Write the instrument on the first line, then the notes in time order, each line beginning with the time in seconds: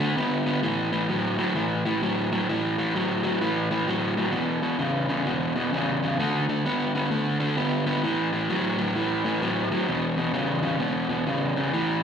overdriven electric guitar
0.00 D3 A3
0.17 D3 B3
0.46 D3 B3
0.63 A2 E3
0.92 A2 E3
1.09 A2 F#3
1.38 A2 F#3
1.55 A2 E3
1.85 A2 E3
2.03 A2 F#3
2.32 A2 F#3
2.49 A2 E3
2.78 A2 E3
2.95 A2 F#3
3.23 A2 F#3
3.41 A2 E3
3.71 A2 E3
3.87 A2 F#3
4.17 A2 F#3
4.32 E2 B2
4.62 E2 B2
4.79 E2 C#3
5.08 E2 C#3
5.26 E2 B2
5.56 E2 B2
5.73 E2 C#3
6.03 E2 C#3
6.19 D3 A3
6.49 D3 A3
6.66 D3 B3
6.95 D3 B3
7.11 D3 A3
7.40 D3 A3
7.57 D3 B3
7.86 D3 B3
8.03 A2 E3
8.33 A2 E3
8.50 A2 F#3
8.78 A2 F#3
8.95 A2 E3
9.25 A2 E3
9.42 A2 F#3
9.72 A2 F#3
9.88 E2 B2
10.17 E2 B2
10.34 E2 C#3
10.63 E2 C#3
10.79 E2 B2
11.09 E2 B2
11.27 E2 C#3
11.56 E2 C#3
11.73 A2 E3